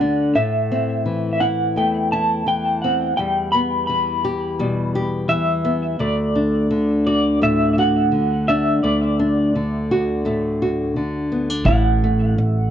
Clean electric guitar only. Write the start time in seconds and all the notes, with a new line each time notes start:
Already playing: F#5
0.35 E5
1.33 E5
1.40 F#5
1.77 G5
2.12 A5
2.48 G5
2.82 F#5
3.17 G5
3.52 B5
3.87 B5
5.29 E5
6.00 D5
7.07 D5
7.43 E5
7.73 E5
7.79 F#5
8.48 E5
8.83 D5
11.66 F#5
12.43 E5